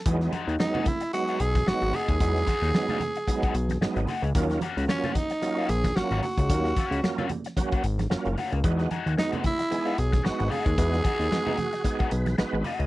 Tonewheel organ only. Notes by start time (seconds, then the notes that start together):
0.06 F#3 G#3 B3 D#4
0.59 F#3 G#3 B3 D#4
1.13 F#3 G#3 B3 D#4
1.66 F#3 G#3 B3 D#4
2.21 F#3 G#3 B3 D#4
2.74 F#3 G#3 B3 D#4
3.27 F#3 G#3 B3 D#4
3.81 F#3 G#3 B3 D#4
4.35 F#3 A#3 C#4 F4
4.88 F#3 A#3 C#4 F4
5.42 F#3 A#3 C#4 F4
5.96 F#3 A#3 C#4 F4
6.49 F#3 A#3 C#4 F4
7.03 F#3 A#3 C#4 F4
7.57 F#3 A#3 C#4 F#4
8.10 F#3 A#3 C#4 F4
8.63 G#3 B3 D#4 F#4
9.17 G#3 B3 D#4 F#4
9.71 G#3 B3 D#4 G#4
10.24 G#3 B3 D#4 F#4
10.78 G#3 B3 D#4 F#4
11.31 G#3 B3 D#4 F#4
11.58 F#4
11.84 G#3 B3 D#4 F#4 G#4
12.11 B4
12.38 G#3 B3 D#4 F#4 B4
12.65 D#5